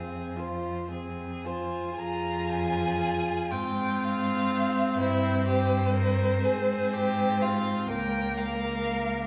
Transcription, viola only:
0.00 0.38 C4 soft
0.37 0.91 F4 soft
0.92 1.46 C4 soft
1.45 1.97 F4 soft
1.97 3.53 F4 medium
3.52 6.42 C4 medium
6.43 7.87 C4 medium
7.91 9.27 A#3 medium

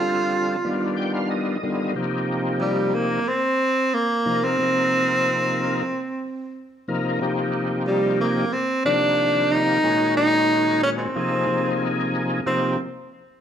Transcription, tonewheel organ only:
0.00 0.56 D3 medium
0.00 0.56 G3 medium
0.00 0.56 C4 medium
0.00 0.57 F4 medium
0.00 0.57 A4 medium
0.64 1.57 D#3 medium
0.64 1.57 G3 medium
0.64 1.57 B3 medium
0.64 1.58 D4 medium
0.64 1.58 F4 medium
0.97 1.13 G5 medium
1.14 1.29 F5 medium
1.30 1.92 D#5 medium
1.63 1.94 D3 medium
1.63 1.94 D#3 medium
1.63 1.94 G3 medium
1.63 1.94 B3 medium
1.63 1.95 F4 medium
1.95 3.19 C3 medium
1.95 3.20 F3 medium
1.95 3.20 A#3 medium
1.95 3.20 D#4 medium
1.95 3.20 G4 medium
4.26 4.57 C3 medium
4.26 4.57 F3 medium
4.26 4.57 A#3 medium
4.26 4.57 D#4 medium
4.26 4.57 A#4 medium
4.59 5.83 C3 medium
4.59 5.83 F3 medium
4.59 5.83 A#3 medium
4.59 5.83 D#4 medium
4.59 5.83 A#4 medium
6.88 7.19 C3 medium
6.88 7.20 F3 medium
6.88 7.20 A#3 medium
6.88 7.20 D#4 medium
6.88 7.20 A#4 medium
7.21 8.45 C3 medium
7.21 8.45 F3 medium
7.21 8.45 A#3 medium
7.21 8.45 D#4 medium
7.21 8.45 G4 medium
8.85 9.78 C3 medium
8.85 9.79 D#3 medium
8.85 9.78 F3 medium
8.85 9.78 A#3 medium
8.85 9.79 G4 medium
9.84 11.08 A#2 medium
9.84 11.08 D#3 medium
9.84 11.08 G#3 medium
9.84 11.08 C#4 medium
9.84 11.08 F#4 medium
11.15 11.46 C3 medium
11.15 11.45 F3 medium
11.15 11.46 A#3 medium
11.15 11.46 D#4 medium
11.15 11.46 G#4 medium
11.47 12.40 C3 medium
11.47 12.40 F3 medium
11.47 12.41 A#3 medium
11.47 12.40 D#4 medium
11.47 12.41 G#4 medium
12.46 12.77 C3 medium
12.46 12.77 F3 medium
12.46 12.77 A#3 medium
12.46 12.77 D#4 medium
12.46 12.77 G4 medium

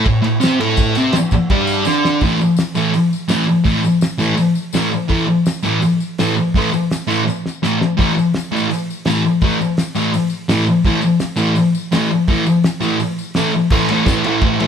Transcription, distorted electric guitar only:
0.05 0.20 A2 medium
0.22 0.37 A2 medium
0.40 0.59 C3 medium
0.40 0.59 C4 loud
0.60 0.95 A2 loud
0.60 0.95 A3 loud
0.97 1.14 C3 medium
0.97 1.14 C4 loud
1.14 muted distorted electric guitar stroke medium
1.32 muted distorted electric guitar stroke medium
1.50 1.85 G2 medium
1.50 1.85 G3 loud
1.86 2.21 D3 medium
1.86 2.21 D4 loud
2.23 2.37 A2 medium
2.23 2.37 E3 loud
2.23 2.37 A3 loud
2.75 2.90 A2 medium
2.75 2.90 E3 medium
2.75 2.91 A3 loud
3.28 3.43 A2 medium
3.28 3.44 E3 medium
3.28 3.44 A3 loud
3.64 3.79 A2 medium
3.64 3.80 E3 loud
3.64 3.80 A3 loud
4.18 4.33 A2 medium
4.18 4.34 E3 loud
4.18 4.34 A3 loud
4.74 4.88 A2 medium
4.74 4.89 E3 medium
4.74 4.89 A3 loud
5.09 5.24 A2 medium
5.09 5.24 E3 loud
5.09 5.24 A3 loud
5.63 5.78 A2 medium
5.63 5.79 E3 medium
5.63 5.79 A3 loud
6.19 6.33 A2 medium
6.19 6.33 E3 medium
6.19 6.33 A3 medium
6.56 6.69 A2 medium
6.56 6.70 E3 loud
6.56 6.70 A3 loud
7.08 7.22 A2 loud
7.08 7.23 E3 medium
7.08 7.22 A3 medium
7.63 7.77 A2 medium
7.63 7.77 E3 loud
7.63 7.77 A3 medium
7.97 8.12 A2 medium
7.97 8.13 E3 loud
7.97 8.13 A3 loud
8.52 8.66 A2 medium
8.52 8.67 E3 medium
8.52 8.67 A3 loud
9.06 9.20 A2 medium
9.06 9.21 E3 medium
9.06 9.21 A3 medium
9.42 9.56 A2 medium
9.42 9.57 E3 loud
9.42 9.57 A3 loud
9.95 10.10 A2 medium
9.95 10.10 E3 medium
9.95 10.10 A3 loud
10.49 10.63 A2 medium
10.49 10.63 E3 medium
10.49 10.64 A3 medium
10.86 11.00 A2 medium
10.86 11.00 E3 medium
10.86 11.00 A3 loud
11.36 11.52 A2 medium
11.36 11.52 E3 medium
11.36 11.53 A3 loud
11.92 12.07 A2 medium
11.92 12.08 E3 medium
11.92 12.07 A3 loud
12.29 12.43 A2 medium
12.29 12.44 E3 loud
12.29 12.44 A3 loud
12.81 12.96 A2 medium
12.81 12.96 E3 medium
12.81 12.97 A3 loud
13.36 13.50 A2 medium
13.36 13.50 E3 medium
13.36 13.51 A3 loud
13.71 13.90 A2 loud
13.71 13.91 E3 loud
13.71 13.92 A3 loud
13.91 14.05 A2 medium
13.91 14.07 E3 medium
13.91 14.07 A3 loud
14.06 14.24 A2 medium
14.06 14.26 E3 loud
14.06 14.26 A3 loud
14.24 14.41 A2 medium
14.24 14.41 E3 loud
14.24 14.43 A3 loud
14.42 14.59 A2 medium
14.42 14.59 E3 medium
14.42 14.60 A3 medium
14.60 14.67 A2 medium
14.60 14.67 E3 medium
14.60 14.67 A3 medium

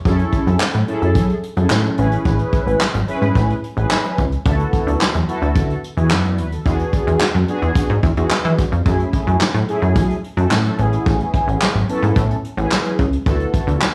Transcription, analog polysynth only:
0.05 0.62 C#4 medium
0.05 0.62 E4 medium
0.05 0.62 G#4 medium
0.05 0.63 A4 loud
0.87 1.35 C#4 loud
0.87 1.35 E4 medium
0.87 1.36 G#4 medium
0.87 1.35 A4 loud
1.56 1.96 C#4 medium
1.56 1.96 E4 medium
1.56 1.97 G#4 medium
1.56 1.98 A4 medium
1.97 2.86 C#4 medium
1.97 2.86 E4 medium
1.97 2.86 G#4 medium
1.97 2.86 B4 loud
3.08 3.56 C#4 medium
3.08 3.56 E4 medium
3.08 3.56 G#4 medium
3.08 3.56 B4 loud
3.76 4.24 C#4 medium
3.76 4.24 E4 medium
3.76 4.24 G#4 medium
3.76 4.25 B4 medium
4.45 5.03 B3 medium
4.45 5.03 E4 medium
4.45 4.52 F4 medium
4.45 5.03 A4 loud
4.52 5.06 F#4 medium
5.27 5.76 B3 medium
5.27 5.76 E4 medium
5.27 5.76 F#4 medium
5.27 5.76 A4 loud
5.96 6.44 B3 medium
5.96 6.44 E4 medium
5.96 6.45 F#4 medium
5.96 6.11 G#4 medium
6.10 6.24 F#5 medium
6.24 6.37 D5 medium
6.38 6.51 B4 medium
6.52 6.78 A4 medium
6.66 7.23 B3 medium
6.66 7.23 D4 medium
6.66 7.23 F#4 medium
6.66 7.23 G#4 loud
7.48 7.96 B3 loud
7.48 7.96 D4 medium
7.48 7.96 F#4 medium
7.48 7.96 G#4 loud
8.17 8.65 B3 medium
8.17 8.65 D4 medium
8.17 8.65 F#4 medium
8.17 8.65 G#4 medium
8.85 9.43 A3 medium
8.85 9.43 C#4 medium
8.85 9.43 E4 medium
8.85 9.43 G#4 loud
9.68 10.16 A3 medium
9.68 10.16 C#4 medium
9.68 10.16 E4 medium
9.68 10.16 G#4 loud
10.37 10.78 A3 medium
10.37 10.77 C#4 medium
10.37 10.77 E4 medium
10.37 10.79 A4 medium
10.78 11.66 B3 medium
10.78 11.66 C#4 medium
10.78 11.67 E4 medium
10.78 11.67 G#4 loud
11.88 12.36 B3 medium
11.88 12.36 C#4 medium
11.88 12.36 E4 medium
11.88 12.37 A4 medium
12.57 13.05 B3 medium
12.57 13.05 C#4 medium
12.57 13.05 E4 medium
12.57 13.05 G#4 medium
13.26 13.83 B3 medium
13.26 13.83 E4 medium
13.26 13.84 F#4 medium
13.26 13.84 A4 loud

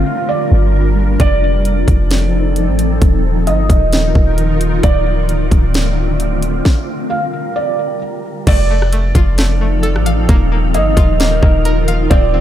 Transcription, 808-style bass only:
0.52 1.17 G1 loud
1.20 1.85 F1 loud
1.88 2.69 F1 loud
2.67 3.00 A1 loud
3.02 3.48 D#1 loud
3.47 3.69 G1 loud
3.70 4.13 D#1 loud
4.15 4.81 D#1 loud
4.83 5.49 D1 loud
5.51 6.61 D1 loud
8.47 9.12 F1 loud
9.15 9.96 F1 loud
9.95 10.27 A1 loud
10.29 10.76 D#1 loud
10.74 10.96 G1 medium
10.97 11.41 D#1 loud
11.43 12.08 D#1 loud
12.11 12.41 D1 loud

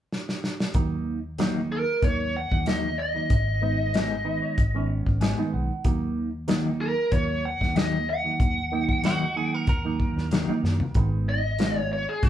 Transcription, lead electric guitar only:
1.72 2.02 A#4 medium
2.04 2.34 C#5 medium
2.37 2.67 F#5 medium
2.68 2.98 D#5 medium
2.99 4.86 D#5 medium
6.81 7.12 A#4 medium
7.12 7.43 C#5 medium
7.45 7.76 F#5 medium
7.77 8.08 D#5 medium
8.10 9.96 F#5 medium
11.29 11.78 D#5 loud
11.78 11.90 C#5 loud
11.93 12.08 C#5 medium
12.09 12.23 G#4 medium
12.24 12.29 G#4 medium

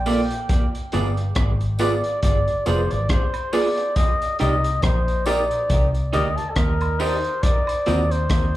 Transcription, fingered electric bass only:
0.00 0.28 A#1 loud
0.95 1.35 G1 loud
1.37 2.01 G#1 loud
2.24 2.47 G1 loud
2.67 2.90 F1 loud
2.93 3.10 G#1 medium
4.41 4.82 C2 loud
4.84 5.48 A#1 loud
5.71 6.11 C2 loud
6.15 6.38 D2 loud
6.57 7.21 D#2 loud
7.88 8.29 D#2 loud
8.31 8.57 D#2 medium

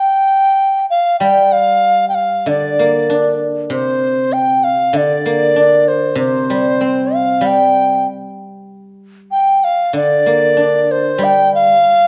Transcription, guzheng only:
1.20 3.08 G3 medium
2.46 4.31 D3 soft
2.79 4.02 A#3 soft
3.10 4.32 D4 soft
3.70 4.93 C3 soft
4.93 6.80 D3 soft
5.26 6.49 A#3 soft
5.56 6.80 D4 soft
6.15 8.04 C3 medium
6.50 7.40 G3 soft
6.81 8.06 C4 soft
7.41 9.31 G3 soft
9.93 11.82 D3 soft
10.26 11.52 A#3 soft
10.57 11.83 D4 soft
11.18 12.07 G3 medium

